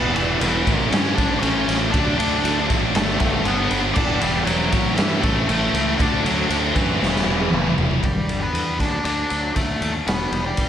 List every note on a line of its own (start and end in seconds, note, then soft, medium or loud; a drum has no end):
0.00 0.12 E1 loud
0.00 0.38 E3 medium
0.00 0.17 G3 loud
0.00 0.15 B3 loud
0.00 0.16 B3 loud
0.00 0.14 E4 loud
0.00 0.13 B4 medium
0.14 0.37 E1 medium
0.14 0.39 E3 medium
0.14 0.40 B3 medium
0.14 0.38 E4 loud
0.14 0.41 E4 medium
0.14 ride medium
0.18 0.40 G3 medium
0.39 0.62 E1 loud
0.39 0.64 E3 medium
0.39 0.88 E3 medium
0.39 0.65 G3 medium
0.39 0.65 B3 medium
0.39 0.87 E4 loud
0.39 0.64 E4 medium
0.39 ride loud
0.65 0.88 A1 medium
0.65 0.90 A2 medium
0.65 0.91 E3 medium
0.65 0.91 A3 medium
0.65 0.92 C#4 medium
0.65 0.93 E4 medium
0.65 kick medium
0.65 ride medium
0.89 1.13 G2 loud
0.89 1.67 A2 medium
0.89 1.41 E3 loud
0.89 1.41 A3 loud
0.89 1.14 C#4 loud
0.89 1.14 C#5 medium
0.89 ride loud
0.93 1.43 C#4 loud
0.93 1.44 E4 loud
0.93 snare loud
1.16 1.39 A1 medium
1.16 1.39 D4 medium
1.16 1.40 D5 medium
1.16 kick medium
1.16 ride medium
1.40 1.64 A1 loud
1.40 1.91 E3 medium
1.40 1.69 A3 medium
1.40 1.76 C#4 loud
1.40 1.78 C#5 medium
1.40 ride loud
1.44 1.68 C#4 medium
1.44 1.66 E4 medium
1.68 1.90 A1 medium
1.68 1.93 A3 medium
1.68 1.92 C#4 medium
1.68 1.91 E4 medium
1.68 snare soft
1.68 ride medium
1.91 2.15 D2 loud
1.91 2.43 D3 loud
1.91 2.20 F#3 loud
1.91 2.19 A3 loud
1.91 2.17 D4 loud
1.91 2.16 D5 medium
1.91 kick loud
1.91 ride loud
1.95 2.17 D4 loud
2.18 2.40 D2 medium
2.18 2.44 F#3 medium
2.18 2.45 A3 medium
2.18 2.65 D4 medium
2.18 2.46 D4 medium
2.18 2.66 D5 medium
2.18 ride medium
2.44 2.66 D2 loud
2.44 2.93 D3 medium
2.44 2.71 F#3 medium
2.44 2.70 A3 medium
2.44 2.69 D4 medium
2.44 ride loud
2.70 2.92 A1 loud
2.70 2.94 F#3 medium
2.70 2.94 A3 medium
2.70 2.93 D4 medium
2.70 kick medium
2.70 ride medium
2.95 3.17 G1 loud
2.95 3.71 G2 loud
2.95 3.45 D3 loud
2.95 3.46 G3 loud
2.95 3.19 A3 medium
2.95 3.47 B3 loud
2.95 3.47 D4 loud
2.95 3.18 A4 medium
2.95 snare loud
2.95 ride loud
3.19 3.42 G1 loud
3.19 3.46 A3 medium
3.19 3.43 A4 medium
3.19 kick medium
3.19 ride medium
3.45 3.67 G1 medium
3.45 3.95 D3 medium
3.45 3.73 G3 medium
3.45 3.82 B3 medium
3.45 3.72 B3 medium
3.45 3.70 D4 medium
3.45 3.81 B4 medium
3.45 ride loud
3.70 3.92 G1 medium
3.70 3.96 G3 medium
3.70 3.96 B3 medium
3.70 3.95 D4 medium
3.70 ride medium
3.94 4.18 E1 loud
3.94 4.45 E3 medium
3.94 4.23 G3 loud
3.94 4.22 B3 loud
3.94 4.22 D4 loud
3.94 4.18 D5 medium
3.94 kick loud
3.94 crash loud
3.98 4.20 E4 loud
4.21 4.43 E1 loud
4.21 4.45 G3 medium
4.21 4.46 G3 medium
4.21 4.47 B3 medium
4.21 4.48 E4 medium
4.21 4.45 G4 loud
4.21 ride medium
4.44 4.68 E1 loud
4.44 4.70 E3 medium
4.44 4.93 F#3 medium
4.44 4.71 G3 medium
4.44 4.71 B3 medium
4.44 4.95 F#4 loud
4.44 ride loud
4.49 4.70 E4 medium
4.71 4.94 A1 medium
4.71 4.96 A2 medium
4.71 4.96 E3 medium
4.71 4.98 A3 medium
4.71 4.98 C#4 medium
4.71 4.98 E4 medium
4.71 kick medium
4.71 ride medium
4.95 5.20 G2 loud
4.95 5.73 A2 loud
4.95 5.20 E3 medium
4.95 5.47 E3 loud
4.95 5.48 A3 medium
4.95 5.49 C#4 loud
4.95 5.22 E4 loud
4.95 snare loud
4.95 ride loud
5.00 5.50 E4 loud
5.21 5.45 A1 loud
5.21 5.46 A3 medium
5.21 5.48 A4 loud
5.21 kick loud
5.21 ride medium
5.48 5.70 A1 loud
5.48 5.97 E3 medium
5.48 5.95 A3 medium
5.48 5.75 A3 medium
5.48 5.74 C#4 medium
5.48 5.72 E4 medium
5.48 6.01 A4 loud
5.48 ride loud
5.73 5.95 C#2 medium
5.73 5.98 A3 medium
5.73 5.98 C#4 medium
5.73 5.97 E4 medium
5.73 ride medium
5.97 6.21 D2 medium
5.97 6.48 D3 loud
5.97 6.25 A3 loud
5.97 6.24 D4 loud
5.97 6.23 F#4 loud
5.97 6.22 D5 medium
5.97 kick loud
5.97 ride loud
6.24 6.46 D2 loud
6.24 6.48 F#3 medium
6.24 6.49 A3 medium
6.24 6.50 D4 medium
6.24 6.50 F#4 medium
6.24 6.48 F#4 loud
6.24 ride medium
6.49 6.71 D2 loud
6.49 6.99 D3 medium
6.49 6.76 A3 medium
6.49 6.56 D4 medium
6.49 6.75 D4 medium
6.49 6.73 F#4 medium
6.49 6.56 D5 medium
6.49 ride loud
6.74 6.97 F#2 medium
6.74 7.72 E3 medium
6.74 7.00 A3 medium
6.74 6.99 D4 medium
6.74 7.72 E4 medium
6.74 6.98 F#4 medium
6.74 kick medium
6.74 ride medium
6.99 7.23 E1 loud
6.99 7.49 E3 medium
6.99 7.49 G3 loud
6.99 7.50 B3 loud
6.99 7.51 E4 loud
6.99 snare medium
7.16 snare medium
7.26 7.48 E1 medium
7.40 high tom medium
7.50 7.73 E1 loud
7.50 8.00 E3 medium
7.50 7.78 G3 medium
7.50 7.76 B3 medium
7.50 7.75 E4 medium
7.50 mid tom medium
7.76 7.99 E1 medium
7.76 8.02 G3 medium
7.76 8.01 B3 medium
7.76 8.00 E4 medium
7.76 floor tom loud
7.91 floor tom medium
8.01 8.22 G1 medium
8.01 8.78 G2 medium
8.01 8.39 G3 medium
8.01 kick medium
8.01 ride medium
8.06 8.43 G4 medium
8.27 8.47 G1 medium
8.27 8.51 D3 medium
8.27 ride medium
8.42 8.76 B3 medium
8.42 8.80 B4 medium
8.52 8.79 E2 medium
8.52 8.77 D3 medium
8.52 ride medium
8.78 8.99 D2 medium
8.78 9.02 D3 medium
8.78 9.03 D4 medium
8.78 9.03 D5 medium
8.78 kick medium
8.78 snare soft
8.78 ride medium
9.04 9.24 D2 medium
9.04 9.54 D3 medium
9.04 9.52 D4 medium
9.04 9.53 D5 medium
9.04 ride medium
9.29 9.50 D2 medium
9.29 10.06 F#3 medium
9.29 ride medium
9.55 9.75 D2 medium
9.55 10.05 D3 medium
9.55 9.91 A3 medium
9.55 9.92 A4 medium
9.55 kick medium
9.55 ride medium
9.80 10.00 D#2 medium
9.80 10.06 A3 medium
9.80 ride medium
10.06 10.26 E1 medium
10.06 10.56 E3 medium
10.06 10.43 B3 medium
10.06 10.46 B4 medium
10.06 snare loud
10.06 ride medium
10.32 10.51 E1 medium
10.32 10.69 G3 medium
10.32 ride medium
10.46 10.69 G3 medium
10.46 10.69 G4 medium
10.57 10.69 E1 medium
10.57 10.69 E3 medium
10.57 kick medium
10.57 ride medium